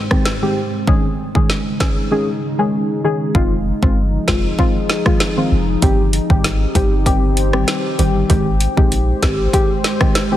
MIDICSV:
0, 0, Header, 1, 5, 480
1, 0, Start_track
1, 0, Key_signature, -4, "minor"
1, 0, Tempo, 618557
1, 681, Time_signature, 4, 2, 24, 8
1, 8046, End_track
2, 0, Start_track
2, 0, Title_t, "Ambient pad"
2, 0, Program_c, 0, 92
2, 0, Note_on_c, 0, 44, 79
2, 0, Note_on_c, 0, 55, 85
2, 0, Note_on_c, 0, 60, 89
2, 650, Note_off_c, 0, 55, 0
2, 661, Note_off_c, 0, 44, 0
2, 661, Note_off_c, 0, 60, 0
2, 682, Note_on_c, 0, 49, 76
2, 682, Note_on_c, 0, 56, 74
2, 682, Note_on_c, 0, 63, 86
2, 2582, Note_off_c, 0, 49, 0
2, 2582, Note_off_c, 0, 56, 0
2, 2582, Note_off_c, 0, 63, 0
2, 2598, Note_on_c, 0, 53, 78
2, 2598, Note_on_c, 0, 63, 73
2, 2598, Note_on_c, 0, 68, 86
2, 4500, Note_off_c, 0, 53, 0
2, 4500, Note_off_c, 0, 68, 0
2, 4520, Note_on_c, 0, 60, 82
2, 4521, Note_on_c, 0, 67, 86
2, 6408, Note_off_c, 0, 63, 0
2, 6421, Note_off_c, 0, 60, 0
2, 6438, Note_on_c, 0, 56, 81
2, 6438, Note_on_c, 0, 72, 88
2, 8046, Note_off_c, 0, 56, 0
2, 8046, Note_off_c, 0, 67, 0
2, 8046, Note_off_c, 0, 72, 0
2, 8046, End_track
3, 0, Start_track
3, 0, Title_t, "Synth stab"
3, 0, Program_c, 1, 62
3, 85, Note_on_c, 1, 51, 78
3, 87, Note_on_c, 1, 56, 73
3, 88, Note_on_c, 1, 60, 73
3, 90, Note_on_c, 1, 67, 86
3, 215, Note_off_c, 1, 51, 0
3, 216, Note_off_c, 1, 56, 0
3, 216, Note_off_c, 1, 60, 0
3, 217, Note_off_c, 1, 67, 0
3, 327, Note_on_c, 1, 51, 70
3, 328, Note_on_c, 1, 56, 65
3, 329, Note_on_c, 1, 60, 63
3, 331, Note_on_c, 1, 67, 84
3, 456, Note_off_c, 1, 51, 0
3, 456, Note_off_c, 1, 56, 0
3, 457, Note_off_c, 1, 60, 0
3, 458, Note_off_c, 1, 67, 0
3, 678, Note_on_c, 1, 51, 89
3, 679, Note_on_c, 1, 56, 87
3, 681, Note_on_c, 1, 61, 85
3, 683, Note_on_c, 1, 68, 102
3, 820, Note_off_c, 1, 51, 0
3, 821, Note_off_c, 1, 56, 0
3, 822, Note_off_c, 1, 61, 0
3, 823, Note_off_c, 1, 68, 0
3, 1046, Note_on_c, 1, 51, 78
3, 1048, Note_on_c, 1, 56, 72
3, 1050, Note_on_c, 1, 61, 71
3, 1051, Note_on_c, 1, 68, 89
3, 1175, Note_off_c, 1, 51, 0
3, 1176, Note_off_c, 1, 56, 0
3, 1177, Note_off_c, 1, 61, 0
3, 1178, Note_off_c, 1, 68, 0
3, 1399, Note_on_c, 1, 51, 82
3, 1400, Note_on_c, 1, 56, 73
3, 1401, Note_on_c, 1, 61, 73
3, 1403, Note_on_c, 1, 68, 89
3, 1541, Note_off_c, 1, 51, 0
3, 1541, Note_off_c, 1, 56, 0
3, 1542, Note_off_c, 1, 61, 0
3, 1543, Note_off_c, 1, 68, 0
3, 1638, Note_on_c, 1, 51, 95
3, 1639, Note_on_c, 1, 56, 82
3, 1641, Note_on_c, 1, 61, 84
3, 1642, Note_on_c, 1, 68, 103
3, 1780, Note_off_c, 1, 51, 0
3, 1781, Note_off_c, 1, 56, 0
3, 1782, Note_off_c, 1, 61, 0
3, 1782, Note_off_c, 1, 68, 0
3, 2005, Note_on_c, 1, 51, 80
3, 2008, Note_on_c, 1, 56, 71
3, 2009, Note_on_c, 1, 61, 71
3, 2010, Note_on_c, 1, 68, 86
3, 2332, Note_off_c, 1, 51, 0
3, 2333, Note_off_c, 1, 56, 0
3, 2334, Note_off_c, 1, 61, 0
3, 2334, Note_off_c, 1, 68, 0
3, 2359, Note_on_c, 1, 51, 82
3, 2361, Note_on_c, 1, 56, 70
3, 2362, Note_on_c, 1, 61, 70
3, 2364, Note_on_c, 1, 68, 88
3, 2582, Note_off_c, 1, 51, 0
3, 2582, Note_off_c, 1, 56, 0
3, 2583, Note_off_c, 1, 61, 0
3, 2584, Note_off_c, 1, 68, 0
3, 2598, Note_on_c, 1, 51, 91
3, 2599, Note_on_c, 1, 56, 88
3, 2601, Note_on_c, 1, 60, 88
3, 2603, Note_on_c, 1, 65, 105
3, 2740, Note_off_c, 1, 51, 0
3, 2741, Note_off_c, 1, 56, 0
3, 2742, Note_off_c, 1, 60, 0
3, 2743, Note_off_c, 1, 65, 0
3, 2966, Note_on_c, 1, 51, 76
3, 2967, Note_on_c, 1, 56, 73
3, 2969, Note_on_c, 1, 60, 72
3, 2971, Note_on_c, 1, 65, 89
3, 3095, Note_off_c, 1, 51, 0
3, 3096, Note_off_c, 1, 56, 0
3, 3097, Note_off_c, 1, 60, 0
3, 3097, Note_off_c, 1, 65, 0
3, 3319, Note_on_c, 1, 51, 81
3, 3321, Note_on_c, 1, 56, 73
3, 3322, Note_on_c, 1, 60, 74
3, 3323, Note_on_c, 1, 65, 87
3, 3461, Note_off_c, 1, 51, 0
3, 3462, Note_off_c, 1, 56, 0
3, 3462, Note_off_c, 1, 60, 0
3, 3463, Note_off_c, 1, 65, 0
3, 3558, Note_on_c, 1, 51, 96
3, 3560, Note_on_c, 1, 56, 88
3, 3561, Note_on_c, 1, 60, 87
3, 3563, Note_on_c, 1, 65, 106
3, 3700, Note_off_c, 1, 51, 0
3, 3701, Note_off_c, 1, 56, 0
3, 3702, Note_off_c, 1, 60, 0
3, 3703, Note_off_c, 1, 65, 0
3, 3925, Note_on_c, 1, 51, 78
3, 3927, Note_on_c, 1, 56, 73
3, 3928, Note_on_c, 1, 60, 72
3, 3930, Note_on_c, 1, 65, 88
3, 4055, Note_off_c, 1, 51, 0
3, 4056, Note_off_c, 1, 56, 0
3, 4056, Note_off_c, 1, 60, 0
3, 4057, Note_off_c, 1, 65, 0
3, 4165, Note_on_c, 1, 51, 74
3, 4167, Note_on_c, 1, 56, 65
3, 4169, Note_on_c, 1, 60, 70
3, 4170, Note_on_c, 1, 65, 78
3, 4295, Note_off_c, 1, 51, 0
3, 4296, Note_off_c, 1, 56, 0
3, 4296, Note_off_c, 1, 60, 0
3, 4297, Note_off_c, 1, 65, 0
3, 4517, Note_on_c, 1, 51, 97
3, 4518, Note_on_c, 1, 55, 89
3, 4520, Note_on_c, 1, 60, 92
3, 4521, Note_on_c, 1, 67, 105
3, 4660, Note_off_c, 1, 51, 0
3, 4660, Note_off_c, 1, 55, 0
3, 4661, Note_off_c, 1, 60, 0
3, 4662, Note_off_c, 1, 67, 0
3, 4885, Note_on_c, 1, 51, 81
3, 4887, Note_on_c, 1, 55, 72
3, 4889, Note_on_c, 1, 60, 73
3, 4890, Note_on_c, 1, 67, 89
3, 5015, Note_off_c, 1, 51, 0
3, 5016, Note_off_c, 1, 55, 0
3, 5016, Note_off_c, 1, 60, 0
3, 5017, Note_off_c, 1, 67, 0
3, 5239, Note_on_c, 1, 51, 77
3, 5240, Note_on_c, 1, 55, 72
3, 5242, Note_on_c, 1, 60, 73
3, 5243, Note_on_c, 1, 67, 86
3, 5380, Note_off_c, 1, 51, 0
3, 5381, Note_off_c, 1, 55, 0
3, 5382, Note_off_c, 1, 60, 0
3, 5383, Note_off_c, 1, 67, 0
3, 5477, Note_on_c, 1, 51, 93
3, 5479, Note_on_c, 1, 55, 84
3, 5481, Note_on_c, 1, 60, 86
3, 5482, Note_on_c, 1, 67, 100
3, 5620, Note_off_c, 1, 51, 0
3, 5621, Note_off_c, 1, 55, 0
3, 5621, Note_off_c, 1, 60, 0
3, 5622, Note_off_c, 1, 67, 0
3, 5845, Note_on_c, 1, 51, 81
3, 5846, Note_on_c, 1, 55, 71
3, 5848, Note_on_c, 1, 60, 73
3, 5849, Note_on_c, 1, 67, 84
3, 6172, Note_off_c, 1, 51, 0
3, 6173, Note_off_c, 1, 55, 0
3, 6174, Note_off_c, 1, 60, 0
3, 6174, Note_off_c, 1, 67, 0
3, 6196, Note_on_c, 1, 51, 82
3, 6198, Note_on_c, 1, 55, 75
3, 6199, Note_on_c, 1, 60, 73
3, 6201, Note_on_c, 1, 67, 84
3, 6420, Note_off_c, 1, 51, 0
3, 6421, Note_off_c, 1, 55, 0
3, 6422, Note_off_c, 1, 60, 0
3, 6422, Note_off_c, 1, 67, 0
3, 6435, Note_on_c, 1, 51, 98
3, 6437, Note_on_c, 1, 56, 89
3, 6438, Note_on_c, 1, 60, 89
3, 6440, Note_on_c, 1, 67, 105
3, 6579, Note_off_c, 1, 51, 0
3, 6580, Note_off_c, 1, 56, 0
3, 6580, Note_off_c, 1, 60, 0
3, 6581, Note_off_c, 1, 67, 0
3, 6804, Note_on_c, 1, 51, 78
3, 6805, Note_on_c, 1, 56, 75
3, 6806, Note_on_c, 1, 60, 73
3, 6808, Note_on_c, 1, 67, 88
3, 6934, Note_off_c, 1, 51, 0
3, 6935, Note_off_c, 1, 56, 0
3, 6935, Note_off_c, 1, 60, 0
3, 6936, Note_off_c, 1, 67, 0
3, 7156, Note_on_c, 1, 51, 78
3, 7157, Note_on_c, 1, 56, 75
3, 7160, Note_on_c, 1, 60, 74
3, 7161, Note_on_c, 1, 67, 87
3, 7299, Note_off_c, 1, 51, 0
3, 7300, Note_off_c, 1, 56, 0
3, 7301, Note_off_c, 1, 60, 0
3, 7302, Note_off_c, 1, 67, 0
3, 7396, Note_on_c, 1, 51, 95
3, 7398, Note_on_c, 1, 56, 89
3, 7399, Note_on_c, 1, 60, 88
3, 7401, Note_on_c, 1, 67, 109
3, 7539, Note_off_c, 1, 51, 0
3, 7540, Note_off_c, 1, 56, 0
3, 7541, Note_off_c, 1, 60, 0
3, 7542, Note_off_c, 1, 67, 0
3, 7764, Note_on_c, 1, 51, 76
3, 7765, Note_on_c, 1, 56, 72
3, 7766, Note_on_c, 1, 60, 72
3, 7769, Note_on_c, 1, 67, 89
3, 7894, Note_off_c, 1, 51, 0
3, 7895, Note_off_c, 1, 56, 0
3, 7895, Note_off_c, 1, 60, 0
3, 7896, Note_off_c, 1, 67, 0
3, 8004, Note_on_c, 1, 51, 76
3, 8006, Note_on_c, 1, 56, 68
3, 8007, Note_on_c, 1, 60, 67
3, 8009, Note_on_c, 1, 67, 85
3, 8046, Note_off_c, 1, 51, 0
3, 8046, Note_off_c, 1, 56, 0
3, 8046, Note_off_c, 1, 60, 0
3, 8046, Note_off_c, 1, 67, 0
3, 8046, End_track
4, 0, Start_track
4, 0, Title_t, "Sub bass"
4, 0, Program_c, 2, 38
4, 2598, Note_on_c, 2, 29, 106
4, 2886, Note_off_c, 2, 29, 0
4, 2968, Note_on_c, 2, 31, 90
4, 3244, Note_off_c, 2, 31, 0
4, 3319, Note_on_c, 2, 29, 88
4, 3507, Note_off_c, 2, 29, 0
4, 4280, Note_on_c, 2, 29, 97
4, 4468, Note_off_c, 2, 29, 0
4, 4519, Note_on_c, 2, 31, 109
4, 4807, Note_off_c, 2, 31, 0
4, 4889, Note_on_c, 2, 32, 87
4, 5164, Note_off_c, 2, 32, 0
4, 5239, Note_on_c, 2, 31, 105
4, 5928, Note_off_c, 2, 31, 0
4, 6199, Note_on_c, 2, 31, 94
4, 6387, Note_off_c, 2, 31, 0
4, 6439, Note_on_c, 2, 32, 118
4, 6727, Note_off_c, 2, 32, 0
4, 6809, Note_on_c, 2, 34, 91
4, 7084, Note_off_c, 2, 34, 0
4, 7158, Note_on_c, 2, 32, 100
4, 7347, Note_off_c, 2, 32, 0
4, 8046, End_track
5, 0, Start_track
5, 0, Title_t, "Drums"
5, 84, Note_on_c, 9, 37, 92
5, 86, Note_on_c, 9, 36, 90
5, 162, Note_off_c, 9, 37, 0
5, 164, Note_off_c, 9, 36, 0
5, 198, Note_on_c, 9, 38, 111
5, 275, Note_off_c, 9, 38, 0
5, 679, Note_on_c, 9, 36, 107
5, 756, Note_off_c, 9, 36, 0
5, 1049, Note_on_c, 9, 36, 89
5, 1126, Note_off_c, 9, 36, 0
5, 1161, Note_on_c, 9, 38, 62
5, 1239, Note_off_c, 9, 38, 0
5, 1399, Note_on_c, 9, 36, 84
5, 1401, Note_on_c, 9, 38, 100
5, 1476, Note_off_c, 9, 36, 0
5, 1479, Note_off_c, 9, 38, 0
5, 2599, Note_on_c, 9, 36, 112
5, 2676, Note_off_c, 9, 36, 0
5, 2969, Note_on_c, 9, 36, 96
5, 3046, Note_off_c, 9, 36, 0
5, 3319, Note_on_c, 9, 36, 86
5, 3321, Note_on_c, 9, 38, 105
5, 3397, Note_off_c, 9, 36, 0
5, 3399, Note_off_c, 9, 38, 0
5, 3559, Note_on_c, 9, 36, 92
5, 3637, Note_off_c, 9, 36, 0
5, 3799, Note_on_c, 9, 38, 69
5, 3876, Note_off_c, 9, 38, 0
5, 3925, Note_on_c, 9, 37, 95
5, 3927, Note_on_c, 9, 36, 92
5, 4003, Note_off_c, 9, 37, 0
5, 4004, Note_off_c, 9, 36, 0
5, 4037, Note_on_c, 9, 38, 106
5, 4115, Note_off_c, 9, 38, 0
5, 4519, Note_on_c, 9, 36, 117
5, 4519, Note_on_c, 9, 42, 66
5, 4596, Note_off_c, 9, 42, 0
5, 4597, Note_off_c, 9, 36, 0
5, 4758, Note_on_c, 9, 42, 56
5, 4836, Note_off_c, 9, 42, 0
5, 4889, Note_on_c, 9, 36, 96
5, 4966, Note_off_c, 9, 36, 0
5, 5001, Note_on_c, 9, 38, 65
5, 5001, Note_on_c, 9, 42, 65
5, 5078, Note_off_c, 9, 38, 0
5, 5078, Note_off_c, 9, 42, 0
5, 5239, Note_on_c, 9, 36, 90
5, 5240, Note_on_c, 9, 42, 48
5, 5317, Note_off_c, 9, 36, 0
5, 5318, Note_off_c, 9, 42, 0
5, 5479, Note_on_c, 9, 36, 92
5, 5482, Note_on_c, 9, 42, 67
5, 5557, Note_off_c, 9, 36, 0
5, 5559, Note_off_c, 9, 42, 0
5, 5719, Note_on_c, 9, 42, 53
5, 5796, Note_off_c, 9, 42, 0
5, 5846, Note_on_c, 9, 37, 96
5, 5924, Note_off_c, 9, 37, 0
5, 5958, Note_on_c, 9, 38, 110
5, 5959, Note_on_c, 9, 42, 76
5, 6035, Note_off_c, 9, 38, 0
5, 6037, Note_off_c, 9, 42, 0
5, 6200, Note_on_c, 9, 42, 52
5, 6278, Note_off_c, 9, 42, 0
5, 6439, Note_on_c, 9, 36, 110
5, 6439, Note_on_c, 9, 42, 67
5, 6516, Note_off_c, 9, 36, 0
5, 6516, Note_off_c, 9, 42, 0
5, 6677, Note_on_c, 9, 42, 56
5, 6755, Note_off_c, 9, 42, 0
5, 6809, Note_on_c, 9, 36, 96
5, 6886, Note_off_c, 9, 36, 0
5, 6921, Note_on_c, 9, 42, 67
5, 6998, Note_off_c, 9, 42, 0
5, 7159, Note_on_c, 9, 36, 93
5, 7159, Note_on_c, 9, 42, 47
5, 7161, Note_on_c, 9, 38, 110
5, 7236, Note_off_c, 9, 36, 0
5, 7237, Note_off_c, 9, 42, 0
5, 7239, Note_off_c, 9, 38, 0
5, 7398, Note_on_c, 9, 36, 90
5, 7401, Note_on_c, 9, 42, 70
5, 7476, Note_off_c, 9, 36, 0
5, 7479, Note_off_c, 9, 42, 0
5, 7639, Note_on_c, 9, 38, 69
5, 7639, Note_on_c, 9, 42, 54
5, 7716, Note_off_c, 9, 38, 0
5, 7716, Note_off_c, 9, 42, 0
5, 7765, Note_on_c, 9, 37, 96
5, 7766, Note_on_c, 9, 36, 97
5, 7843, Note_off_c, 9, 37, 0
5, 7844, Note_off_c, 9, 36, 0
5, 7878, Note_on_c, 9, 38, 114
5, 7879, Note_on_c, 9, 42, 74
5, 7956, Note_off_c, 9, 38, 0
5, 7957, Note_off_c, 9, 42, 0
5, 8046, End_track
0, 0, End_of_file